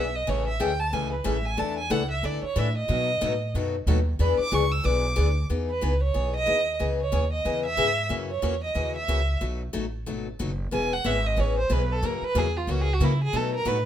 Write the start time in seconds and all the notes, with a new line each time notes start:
Already playing: B1 E5
0.15 D#5
0.27 A1 C#3 E3 G#3 A3 C#4 E4 G#4 A4 C#5
0.47 E5
0.60 D2 C#3 E3 G#3 A3 C#4 E4 G#4 A4 G5
0.80 A5
0.93 C#2 C#3 E3 G#3 A3 C#4 E4 G#4 A4 G#5
1.12 B4
1.24 A1 C#3 E3 G#3 A3 C#4 E4 G#4 A4 E5
1.45 G#5
1.57 E2 E3 A3 D4 E4 A4 A5
1.78 G#5
1.90 C#2 E3 A3 D4 E4 A4 F#5
2.11 E5
2.23 D2 E3 A3 D4 E4 A4 D5
2.43 C#5, muted upright bass stroke
2.56 A2 E3 A3 D4 E4 A4 E5
2.77 D#5
2.88 B2 D#3 F#3 A3 B3 D#4 F#4 A4
3.21 A2 B2 D#3 F#3 A3 B3 D#4 F#4 A4
3.54 F#2 B2 D#3 F#3 A3 B3 D#4 F#4 A4
3.87 D#2 B2 D#3 F#3 A3 B3 D#4 F#4 A4
4.19 E2 E3 B3 D4 G#4 B4 B5
4.39 D6, muted upright bass stroke
4.51 C#2 E3 B3 D4 G#4 B4 C#6
4.71 E6
4.84 B1 E3 B3 D4 G#4 B4 D6
5.16 D2 E3 B3 D4 G#4 B4
5.50 E2 E3 B3 D#4 G#4
5.70 B4
5.81 C#2 E3 B3 D#4 G#4
6.03 C#5
6.14 B1 E3 B3 D#4 G#4
6.36 D#5
6.46 D#2 E3 B3 D#4 G#4
6.79 C#2 C#3 E3 B3 C#4 G#4
7.01 C#5
7.12 D#2 C#3 E3 B3 C#4 G#4
7.32 D#5
7.45 E2 C#3 E3 B3 C#4 G#4
7.66 E5
7.77 G#2 C#3 E3 B3 C#4 G#4
8.09 F#2 C#3 E3 A#3 C#4 F#4
8.31 C#5
8.42 E2 C#3 E3 A#3 C#4 F#4
8.64 D#5
8.75 D#2 C#3 E3 A#3 C#4 F#4
8.96 E5
9.08 C#2 C#3 E3 A#3 C#4 F#4
9.41 B1 B2 F#3 A3 D#4 F#4
9.73 A1 B2 F#3 A3 D#4 F#4
10.06 G#1 B2 F#3 A3 D#4 F#4
10.39 F#1 B2 F#3 A3 D#4 F#4
10.71 E1 E3 G#3 B3 C#4 G#4 B4 G#5
10.93 F#5
11.04 G#1 E3 G#3 B3 C#4 G#4 B4 E5
11.26 D#5
11.36 A1 E3 G#3 B3 C#4 G#4 B4 C#5
11.58 C5
11.69 B1 E3 G#3 B3 C#4 G#4 B4
11.92 A4
12.02 F#2 C#3 E3 F#3 A#3 C#4 E4 F#4 A#4
12.22 B4, muted upright bass stroke
12.35 E2 C#3 E3 F#3 A#3 C#4 E4 F#4 G#4 A#4
12.57 F4
12.67 C#2 C#3 E3 F#3 A#3 C#4 E4 F#4 A#4
12.81 G#4
12.93 F#4
13.00 C#3 E3 F#3 A#3 C#4 E4 F#4 A#4
13.24 G#4
13.33 B2 F#3 A3 D#4 F#4 A4 B4
13.55 A#4
13.65 A2 B2 F#3 A3 D#4 F#4 B4